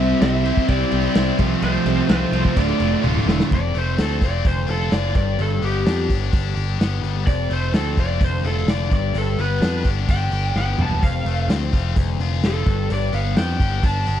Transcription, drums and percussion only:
0.22 snare, crash
0.46 crash
0.57 kick
0.68 kick, crash
0.92 crash
1.15 snare, crash
1.39 kick, crash
1.62 crash
1.86 snare, crash
2.09 snare, crash
2.33 crash
2.45 kick
2.57 kick, crash
2.80 crash
3.04 high tom
3.16 mid tom
3.29 snare
3.40 snare
3.51 kick, crash
3.75 open hi-hat
3.98 snare, open hi-hat
4.21 kick, open hi-hat
4.45 kick, open hi-hat
4.68 open hi-hat
4.92 snare, open hi-hat
5.15 kick, open hi-hat
5.39 open hi-hat
5.62 open hi-hat
5.86 snare, open hi-hat
6.10 kick, open hi-hat
6.33 kick, open hi-hat
6.57 open hi-hat
6.81 snare, open hi-hat
7.04 open hi-hat
7.27 kick, open hi-hat
7.51 open hi-hat
7.74 snare, open hi-hat
7.97 kick, open hi-hat
8.21 kick, open hi-hat
8.45 open hi-hat
8.68 snare, open hi-hat
8.91 kick, open hi-hat
9.15 open hi-hat
9.39 open hi-hat
9.62 snare, open hi-hat
9.84 kick, open hi-hat
10.08 kick, open hi-hat
10.32 open hi-hat
10.56 snare
10.79 mid tom
10.91 floor tom
11.03 kick, open hi-hat
11.26 open hi-hat
11.50 snare, open hi-hat
11.73 kick, open hi-hat
11.96 kick, open hi-hat
12.20 open hi-hat
12.43 snare, open hi-hat
12.66 kick, open hi-hat
12.90 open hi-hat
13.13 open hi-hat
13.37 snare, open hi-hat
13.60 kick, open hi-hat
13.83 kick, open hi-hat
14.06 open hi-hat

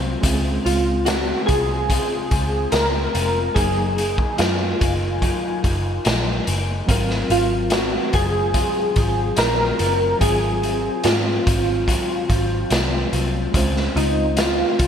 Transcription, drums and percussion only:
0.23 kick, closed hi-hat
0.66 closed hi-hat
1.06 snare, closed hi-hat
1.48 kick, closed hi-hat
1.90 kick, closed hi-hat
2.31 kick, closed hi-hat
2.72 snare, closed hi-hat
3.15 closed hi-hat
3.56 kick, closed hi-hat
3.98 closed hi-hat
4.18 kick
4.38 snare, closed hi-hat
4.81 kick, closed hi-hat
5.22 kick, closed hi-hat
5.64 kick, closed hi-hat
6.05 snare, closed hi-hat
6.47 closed hi-hat
6.89 kick, closed hi-hat
7.10 snare
7.30 closed hi-hat
7.70 snare, closed hi-hat
8.13 kick, closed hi-hat
8.54 kick, closed hi-hat
8.96 kick, closed hi-hat
9.36 snare, closed hi-hat
9.79 closed hi-hat
10.21 kick, closed hi-hat
10.63 closed hi-hat
11.04 snare, closed hi-hat
11.47 kick, closed hi-hat
11.88 kick, closed hi-hat
12.30 kick, closed hi-hat
12.70 snare, closed hi-hat
13.13 closed hi-hat
13.54 kick, closed hi-hat
13.77 snare
13.97 closed hi-hat
14.37 snare, closed hi-hat
14.79 kick, closed hi-hat

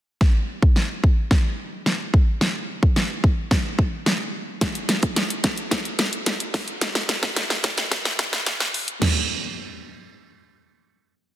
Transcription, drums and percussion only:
0.21 kick, snare
0.63 kick
0.76 snare
1.04 kick
1.31 kick, snare
1.86 snare
2.14 kick
2.41 snare
2.83 kick
2.96 snare
3.24 kick
3.51 kick, snare
3.79 kick
4.06 snare
4.61 kick, snare, closed hi-hat
4.75 closed hi-hat
4.89 snare, closed hi-hat
5.03 kick, closed hi-hat
5.16 snare, closed hi-hat
5.30 closed hi-hat
5.44 kick, snare, closed hi-hat
5.58 closed hi-hat
5.71 kick, snare, closed hi-hat
5.85 closed hi-hat
5.99 snare, closed hi-hat
6.13 closed hi-hat
6.26 snare, closed hi-hat
6.40 closed hi-hat
6.54 kick, snare, open hi-hat
6.68 closed hi-hat
6.81 snare, closed hi-hat
6.95 snare, closed hi-hat
7.09 snare, closed hi-hat
7.23 kick, snare, closed hi-hat
7.36 snare, closed hi-hat
7.50 snare, closed hi-hat
7.64 kick, snare, closed hi-hat
7.78 snare, closed hi-hat
7.91 kick, snare, closed hi-hat
8.05 snare, closed hi-hat
8.19 kick, snare, closed hi-hat
8.33 snare, closed hi-hat
8.46 snare, closed hi-hat
8.60 snare, closed hi-hat
8.74 open hi-hat
8.88 closed hi-hat
9.02 snare, floor tom, crash

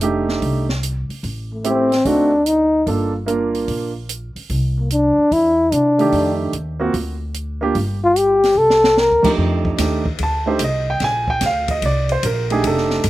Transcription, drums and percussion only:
0.01 closed hi-hat
0.29 snare
0.42 kick, open hi-hat
0.69 snare
0.83 closed hi-hat
1.10 open hi-hat
1.24 kick, open hi-hat
1.64 closed hi-hat
1.92 snare, open hi-hat
2.05 kick, open hi-hat
2.46 closed hi-hat
2.87 kick, open hi-hat
3.28 closed hi-hat
3.55 open hi-hat
3.68 kick, open hi-hat
4.09 closed hi-hat
4.36 open hi-hat
4.50 kick, open hi-hat
4.90 closed hi-hat
5.32 kick, open hi-hat
5.72 closed hi-hat
5.99 open hi-hat
6.12 kick, open hi-hat
6.53 closed hi-hat
6.94 kick, open hi-hat
7.34 closed hi-hat
7.75 kick, open hi-hat
8.16 closed hi-hat
8.44 snare, open hi-hat
8.70 snare
8.84 snare
8.97 snare
9.24 kick, crash
9.38 kick
9.65 kick
9.78 kick, snare, hi-hat pedal, ride
10.05 kick
10.19 kick, ride
10.59 kick, hi-hat pedal, ride
11.00 kick, snare, ride
11.28 kick
11.41 kick, snare, hi-hat pedal, ride
11.68 kick, ride
11.82 kick, ride
12.09 ride
12.23 kick, hi-hat pedal, ride
12.50 ride
12.64 kick, ride
12.77 snare
12.90 snare
13.04 kick, hi-hat pedal, ride

